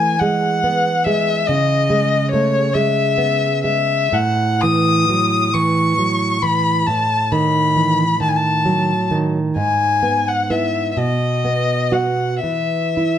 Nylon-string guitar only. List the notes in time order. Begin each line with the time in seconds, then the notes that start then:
Already playing: E3 A3
0.21 G#3
0.64 B3
1.06 G#3
1.49 C#3
1.90 G#3
2.33 A3
2.75 G#3
3.18 B3
3.64 G#3
4.12 A2
4.63 E3
5.09 F#3
5.54 E3
5.98 F#3
6.43 E3
6.87 A2
7.32 D#3
7.76 E3
8.20 D#3
8.65 F#3
9.11 D#3
9.56 G#2
10.03 B3
10.50 B3 E4
10.97 B2
11.45 B3
11.92 B3 F#4
12.43 E3
12.97 E4